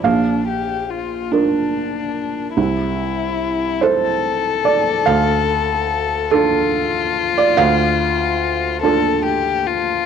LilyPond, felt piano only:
\new Staff \with { instrumentName = "Felt piano" } { \time 6/8 \key d \minor \tempo 4. = 48 << { f''4. r4. | r4. c''4 d''8 | f''4. a'4~ a'16 d''16 | f''2. | } \\ { bes,,4. <d' f' bes'>4. | c,4. <e' a'>4. | d,4. <d' f'>4. | d,4. <d' f' a'>4. | } >> }